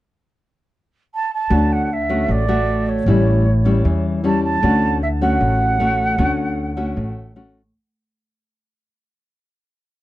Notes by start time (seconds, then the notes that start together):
1.14 A5
1.33 A5
1.50 D2 D3 A3 C#4 F#4
1.72 F#5
1.93 E5
2.09 A3 C#4 F#4
2.28 A1 A2 D5
2.48 A3 F#4
2.88 C#5
3.06 A1 A2 G3 C#4 E4
3.65 G3 C#4 E4
3.85 E2 E3
4.24 G3 C#4 E4 A5
4.43 A5
4.63 D2 D3 A3 C#4 F#4
5.02 E5
5.22 A3 C#4 F#4 F#5
5.40 A1 A2
5.80 A3 C#4 F#4
6.18 D2 D3 A3 C#4 F#4
6.77 A3 C#4 F#4
6.96 A1 A2
7.36 A3 C#4 F#4